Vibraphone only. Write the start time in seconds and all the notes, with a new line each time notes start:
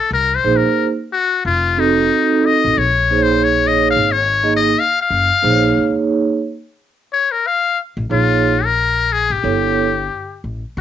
0.44 A#3 D#4 G#4 C5
1.77 C4 D#4 F#4 A4
3.10 A#3 D#4 G#4 C5
3.18 C#5
4.43 A#3 D#4 G#4 D#5
5.42 A#3 D#4 G#4 C5
5.50 C#5
8.10 A#3 D#4 G#4 C#5
9.43 B3 E4 A4 C#5